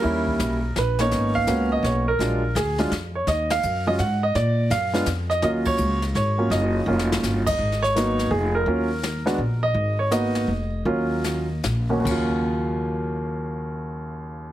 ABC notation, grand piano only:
X:1
M:3/4
L:1/8
Q:"Swing" 1/4=167
K:Ebm
V:1 name="Grand piano"
B4 c d- | d f2 e d B- | B2 A2 z d | e f2 e g e |
=d2 f2 z e | e d2 z d2 | e4- e e- | e d3 A B- |
B4- B e- | e d e4- | e4 z2 | z6 |
z6 |]
V:2 name="Grand piano"
[=G,B,D_F]3 z2 [B,CDE]- | [B,CDE]2 [B,CDG]3 z | [G,A,=DF] z2 [G,A,DF] z2 | z3 [G,A,DF] z2 |
z3 [A,C=DF] z2 | [G,B,DF]3 z2 [G,B,DF]- | [G,B,DF]2 [G,B,DF]3 z | z2 [G,B,CE]2 z2 |
[G,B,DF] z2 [A,C=DG] z2 | z2 [B,CEG]2 z2 | [G,B,DF]3 z2 [E,,G,B,DG] | [E,,D,G,F]6- |
[E,,D,G,F]6 |]